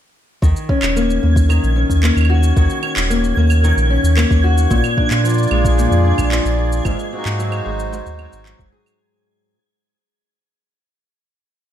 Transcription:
0.42 0.53 D#2 medium
0.42 1.48 D#3 medium
0.42 9.01 G#6 medium
0.42 kick loud
0.42 shaker soft
0.56 shaker soft
0.69 1.75 C#4 medium
0.69 kick loud
0.83 1.19 D#1 loud
0.83 clap medium
0.83 claves medium
0.83 shaker medium
0.96 1.22 A#3 medium
0.96 shaker soft
1.10 shaker soft
1.23 1.59 D#2 medium
1.23 2.02 A#3 medium
1.36 kick medium
1.36 shaker medium
1.49 2.56 D#3 medium
1.49 claves medium
1.49 shaker medium
1.64 1.85 A#1 medium
1.64 shaker soft
1.76 2.82 C#4 medium
1.90 2.11 D#2 medium
1.90 kick medium
1.90 shaker medium
2.03 3.10 A#3 medium
2.03 clap medium
2.03 shaker soft
2.16 2.52 D#2 medium
2.16 claves soft
2.16 shaker soft
2.21 claves soft
2.25 claves medium
2.30 4.42 F#4 medium
2.43 shaker medium
2.57 2.67 D#2 medium
2.57 3.63 D#3 medium
2.57 kick loud
2.57 shaker soft
2.70 shaker soft
2.83 3.89 C#4 medium
2.83 claves medium
2.97 3.33 D#1 loud
2.97 clap medium
2.97 shaker medium
3.10 3.37 A#3 medium
3.10 shaker soft
3.24 shaker soft
3.37 3.73 D#2 medium
3.37 4.16 A#3 medium
3.50 claves medium
3.50 shaker medium
3.64 4.76 D#3 medium
3.64 shaker medium
3.77 3.98 A#1 medium
3.77 shaker soft
3.90 4.76 C#4 medium
4.03 4.25 D#2 medium
4.03 shaker medium
4.17 5.51 A#3 medium
4.17 clap medium
4.17 claves medium
4.17 shaker medium
4.31 4.67 D#2 medium
4.31 kick loud
4.31 shaker soft
4.44 4.76 F#4 medium
4.58 shaker medium
4.70 4.82 A#1 medium
4.70 5.77 A#2 medium
4.70 7.71 A#3 medium
4.70 kick loud
4.70 shaker medium
4.84 claves medium
4.84 shaker soft
4.97 6.04 D4 medium
4.97 kick loud
5.08 5.47 A#2 medium
5.08 6.86 F4 medium
5.08 clap medium
5.08 shaker medium
5.24 6.30 F3 medium
5.24 6.85 D5 medium
5.24 shaker medium
5.29 shaker soft
5.34 shaker soft
5.38 shaker soft
5.43 shaker soft
5.47 5.87 A#1 medium
5.47 7.42 G#3 medium
5.47 claves medium
5.47 shaker soft
5.65 7.71 G#4 medium
5.65 kick loud
5.65 shaker medium
5.78 6.85 A#2 medium
5.78 shaker medium
5.91 6.13 F2 medium
5.91 shaker soft
6.05 6.91 D4 medium
6.18 6.40 A#1 medium
6.18 kick medium
6.18 claves medium
6.18 shaker medium
6.31 6.91 F3 medium
6.31 clap medium
6.31 shaker soft
6.45 6.81 A#1 medium
6.45 shaker soft
6.58 7.42 G#4 medium
6.72 shaker medium
6.85 6.96 G#1 medium
6.85 7.92 G#2 medium
6.85 8.99 G#3 medium
6.85 kick loud
6.85 claves medium
6.85 shaker medium
6.99 shaker soft
7.12 8.18 C4 medium
7.12 8.99 F#4 medium
7.18 8.99 D#4 medium
7.25 7.61 G#2 medium
7.25 clap medium
7.25 shaker medium
7.39 8.45 F#3 medium
7.39 shaker medium
7.50 9.00 C5 medium
7.50 claves medium
7.50 shaker soft
7.66 8.02 G#1 medium
7.66 9.55 G#3 medium
7.80 shaker medium
7.92 9.55 G#2 medium
7.92 shaker medium
8.06 8.27 D#2 medium
8.06 shaker soft
8.19 9.55 C4 medium
8.19 claves medium
8.33 8.54 G#1 medium
8.33 shaker medium
8.45 9.55 F#3 medium
8.45 clap medium
8.45 shaker medium
8.59 8.70 F#1 loud
8.59 kick loud
8.59 shaker soft
8.72 9.55 G#4 medium
8.86 claves medium
8.86 shaker medium

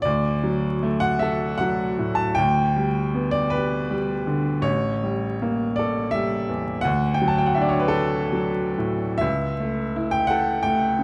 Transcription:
0.02 2.34 D2 medium
0.02 1.01 D5 loud
0.44 1.07 F#3 medium
0.83 1.45 A3 medium
1.00 1.21 F#5 loud
1.19 1.84 A4 medium
1.19 1.59 E5 loud
1.58 2.22 F#3 medium
1.58 2.17 F#5 loud
1.99 2.37 A2 medium
2.15 2.36 A5 loud
2.35 4.63 D2 medium
2.35 3.33 G5 loud
2.77 3.39 G3 medium
3.14 3.77 B3 medium
3.31 3.52 D5 loud
3.50 4.14 G4 medium
3.50 4.65 B4 medium
3.91 4.51 G3 medium
4.27 4.66 D3 medium
4.62 6.78 A1 medium
4.62 5.77 C#5 loud
5.04 5.64 G3 medium
5.42 6.00 A#3 medium
5.76 6.36 A4 medium
5.76 6.13 D5 medium
6.11 6.71 G3 medium
6.11 6.83 E5 loud
6.49 6.85 E2 medium
6.81 9.17 D2 medium
6.81 7.16 F#5 loud
7.14 7.30 G5 medium
7.21 7.79 F#3 medium
7.28 7.40 A5 medium
7.38 7.48 G5 medium
7.46 7.55 F#5 medium
7.55 8.16 D4 medium
7.55 7.63 E5 medium
7.61 7.71 D5 medium
7.69 7.80 C#5 medium
7.80 7.91 B4 medium
7.88 9.19 A4 medium
8.33 9.05 F#3 medium
8.78 9.22 A2 medium
9.18 11.04 C#2 medium
9.18 10.12 E5 loud
9.60 10.17 A3 medium
9.96 10.52 E4 medium
10.11 10.30 G5 loud
10.27 10.85 A4 medium
10.27 10.63 F#5 loud
10.63 11.04 A3 medium
10.63 11.04 G5 loud
10.98 11.04 C#3 medium

